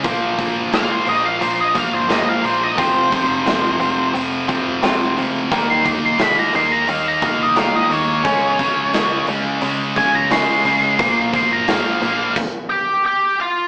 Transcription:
<<
  \new Staff \with { instrumentName = "Lead electric guitar" } { \time 4/4 \key bes \dorian \tempo 4 = 88 r4 f''16 c''16 ees''16 f''16 c''16 ees''16 f''16 c''16 ees''16 f''16 c''16 ees''16 | c''2 r2 | r16 c'''16 r16 c'''16 b''16 bes''16 c'''16 bes''16 f''16 bes''16 f''16 ees''16 f''16 ees''16 des''8~ | des''4. r4 aes''16 bes''16 c'''4~ |
c'''8 c'''16 bes''16 f''4 r8 <g' g''>8 <g' g''>8 <f' f''>8 | }
  \new Staff \with { instrumentName = "Clean electric guitar" } { \clef bass \time 4/4 \key bes \dorian <bes, f bes>8 <bes, f>8 <bes, f>8 <bes, f>8 <bes, f>8 <bes, f>8 <bes, f bes>8 <bes, f>8 | <f c' f'>8 <f c'>8 <f c'>8 <f c'>8 <f c'>8 <f c'>8 <f c' f'>8 <f c'>8 | <ees g bes>8 <ees g>8 <ees g>8 <ees g>8 <ees g>8 <ees g>8 <ees g bes>8 <ees g>8 | <des aes des'>8 <des aes>8 <des aes>8 <des aes>8 <des aes>8 <des aes>8 <des aes des'>8 <des aes>8 |
<bes, f bes>8 <bes, f>8 <bes, f>8 <bes, f>8 r2 | }
  \new Staff \with { instrumentName = "Distorted electric guitar" } { \clef bass \time 4/4 \key bes \dorian <bes, f bes>8 <bes, f bes>8 <bes, f bes>8 <bes, f bes>8 <bes, f bes>8 <bes, f bes>8 <bes, f bes>8 <bes, f bes>8 | <f, c f>8 <f, c f>8 <f, c f>8 <f, c f>8 <f, c f>8 <f, c f>8 <f, c f>8 <f, c f>8 | <ees bes ees'>8 <ees bes ees'>8 <ees bes ees'>8 <ees bes ees'>8 <ees bes ees'>8 <ees bes ees'>8 <ees bes ees'>8 <ees bes ees'>8 | <des aes des'>8 <des aes des'>8 <des aes des'>8 <des aes des'>8 <des aes des'>8 <des aes des'>8 <des aes des'>8 <des aes des'>8 |
<bes, f bes>8 <bes, f bes>8 <bes, f bes>8 <bes, f bes>8 r2 | }
  \new Staff \with { instrumentName = "Picked electric bass" } { \clef bass \time 4/4 \key bes \dorian bes,,8. g,,8 r16 bes,,8 bes,,8 r16 g,,8 r16 bes,,8 | f,,8 r16 f,,8. f,,8 f,,8 r16 f,,8 r16 des,8 | ees,8. c,8 r16 ees,8 ees,8 r16 c,8 r16 ees,8 | des,8 r16 des,8. des,8 des,8 r16 des,8 r16 des8 |
bes,,8. g,,8 r16 bes,,8 r2 | }
  \new DrumStaff \with { instrumentName = "Drums" } \drummode { \time 4/4 <hho bd>8 <hho bd>8 <hho sn>8 hho8 hho8 <hho bd>8 <hho sn>8 hho8 | <hho bd>8 <hho bd>8 <hho sn>8 hho8 hho8 <hho bd>8 <hho sn>8 hho8 | <hho bd>8 <hho bd>8 <hho sn>8 hho8 hho8 <hho bd>8 <hho sn>8 hho8 | <hho bd>8 <hho bd>8 <hho sn>8 hho8 hho8 <hho bd>8 <hho sn>8 hho8 |
<hho bd>8 <hho bd>8 <hho sn>8 hho8 <cymc bd>4 r4 | }
>>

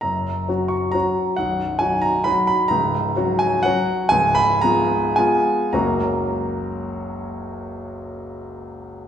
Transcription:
<<
  \new Staff \with { instrumentName = "Grand piano" } { \time 3/4 \key fis \major \tempo 4 = 123 ais''4. cis'''8 ais''4 | fis''4 gis''8 ais''8 b''8 b''8 | ais''4. gis''8 fis''4 | gis''8 b''8 ais''4 gis''4 |
<fis,, cis, fis ais cis' fis' ais''>2.~ | <fis,, cis, fis ais cis' fis' ais''>2. | }
  \new Staff \with { instrumentName = "Grand piano" } { \time 3/4 \key fis \major <fis,, fis,>4 <fis cis' fis'>4 <fis cis' fis'>4 | <b,,, b,,>4 <fis dis' fis'>4 <fis dis' fis'>4 | <cis,, cis,>4 <fis cis' fis'>4 <fis cis' fis'>4 | <cis,, cis,>4 <gis b eis'>4 <gis b eis'>4 |
r2. | r2. | }
>>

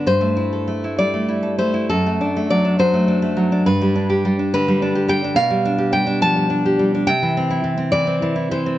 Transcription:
\new Staff \with { instrumentName = "Nylon-string guitar" } { \time 6/8 \key g \major \tempo 4. = 69 << { c''4. d''4 c''8 | a'4 d''8 c''4. | b'4. b'4 g''8 | \key c \major f''4 g''8 a''4. |
g''4. d''4 c''8 | } \\ { g,16 a16 e'16 a'16 a16 e'16 g16 a16 e'16 a'16 a16 e'16 | fis,16 a16 d'16 a16 fis16 d'16 fis16 a16 d'16 a16 fis16 d'16 | g,16 g16 d'16 g'16 g16 d'16 d16 g16 d'16 g'16 g16 d'16 | b,16 g16 d'16 g'16 g16 d'16 f16 g16 d'16 g'16 g16 d'16 |
c16 e16 c'16 e'16 e16 c'16 e16 c'16 e16 e'16 e16 c'16 | } >> }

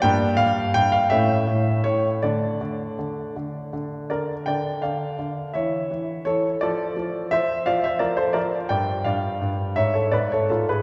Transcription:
<<
  \new Staff \with { instrumentName = "Grand piano" } { \time 6/8 \key d \minor \tempo 4. = 56 g''8 f''8 g''16 f''16 e''4 cis''8 | d''2~ d''8 <bes' d''>8 | <d'' g''>8 <d'' f''>4 <cis'' e''>4 <a' cis''>8 | <a' d''>4 <c'' e''>8 <d'' f''>16 <c'' e''>16 <bes' d''>16 <a' c''>16 <bes' d''>8 |
<d'' g''>8 <d'' f''>4 <cis'' e''>16 <a' cis''>16 <b' d''>16 <a' cis''>16 <eis' a'>16 <gis' b'>16 | }
  \new Staff \with { instrumentName = "Grand piano" } { \clef bass \time 6/8 \key d \minor << { <bes d'>4. <a cis'>4. | <a d'>2. | r2. | r2. |
r2. | } \\ { g,8 g,8 g,8 a,8 a,8 a,8 | d8 d8 d8 d8 d8 d8 | d8 d8 d8 e8 e8 e8 | f8 f8 f8 f8 f8 f8 |
g,8 g,8 g,8 gis,8 gis,8 gis,8 | } >> }
>>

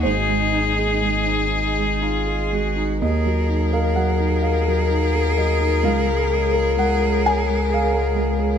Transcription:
<<
  \new Staff \with { instrumentName = "Ambient pad" } { \time 6/8 \key ees \dorian \tempo 4. = 42 << { <aes ees''>2. | <ges ees''>2. | <aes des''>2. | } \\ { aes'2. | bes'2.~ | bes'2. | } >> }
  \new Staff \with { instrumentName = "Violin" } { \time 6/8 \key ees \dorian aes'2. | bes'2.~ | bes'2. | }
  \new Staff \with { instrumentName = "Cello" } { \time 6/8 \key ees \dorian ees'4. ees'8 f'8 ges'8 | aes'2.~ | aes'2. | }
  \new Staff \with { instrumentName = "Felt piano" } { \time 6/8 \key ees \dorian << { c''2~ c''8 r8 | ees''8. f''16 ges''8 f''4 ees''8 | f''4 ges''8 aes''8 f''4 | } \\ { aes,16 aes16 ees'16 aes'16 aes16 ees'8 aes16 ees'16 aes'16 aes16 ees'16 | ees,16 ges16 ees'16 bes'16 ges16 ees'8 ges16 ees'16 bes'16 ges16 ees'16 | des,16 aes16 aes'16 bes'16 aes16 aes'8 aes16 aes'16 bes'16 aes16 aes'16 | } >> }
  \new Staff \with { instrumentName = "Sub bass" } { \clef bass \time 6/8 \key ees \dorian aes,,2. | ees,2. | des,2. | }
>>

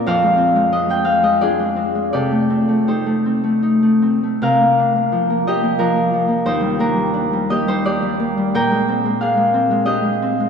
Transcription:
<<
  \new Staff \with { instrumentName = "Harp" } { \time 3/4 \key c \minor \tempo 4 = 87 << { f''4 ees''16 g''16 f''16 ees''16 d''4 | d''4 c''2 | f''4. ees''8 bes'4 | c''8 bes'4 ees''16 c''16 d''4 |
g''4 f''4 ees''4 | } \\ { <f' c'' d''>2 <f' aes'>4 | <g' a'>4 <g' a'>2 | bes'4. g'8 d'4 | ees'8 d'4 g'16 ees'16 g'4 |
bes'4 aes'4 g'4 | } >> }
  \new Staff \with { instrumentName = "Harp" } { \time 3/4 \key c \minor <f, c' d'>16 aes16 c'16 aes16 d'16 aes16 c'16 aes16 d'16 aes16 c'16 aes16 | c16 a16 c'16 a16 ees'16 a16 c'16 a16 ees'16 a16 c'16 a16 | c16 bes16 d'16 bes16 f16 bes16 f16 bes16 f16 bes16 f16 bes16 | ees,16 g16 bes16 g16 d'16 g16 bes16 g16 d'16 g16 bes16 g16 |
bes,16 aes16 c'16 aes16 d'16 aes16 c'16 aes16 d'16 aes16 c'16 aes16 | }
>>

